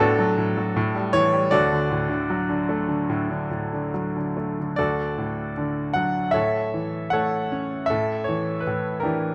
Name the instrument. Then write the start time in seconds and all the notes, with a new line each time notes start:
grand piano
Already playing: A4
0.00 A2 D4 F#4
0.19 F#3
0.38 A2
0.57 F#3
0.76 A2
0.95 G3
1.13 E3 C#5
1.33 G3
1.51 D2 F#4 A4 D5
1.72 D3
1.91 A2
2.09 D3
2.30 F#3
2.49 D3
2.69 A3
2.88 D3
3.10 A2
3.30 D3
3.51 A2
3.73 D3
3.94 F#3
4.17 D3
4.37 A3
4.60 D3
4.76 D2 F#4 A4 D5
5.18 A2
5.57 D3
5.93 F#3 F#5
6.31 A4 C#5 E5
6.35 A2
6.74 E3
7.10 A3 A4 C#5 F#5
7.52 C#4
7.86 A4 E5
7.91 A2
8.24 E3 C#5
8.60 B4
8.67 A2
9.00 D4 G4 A#4
9.05 E3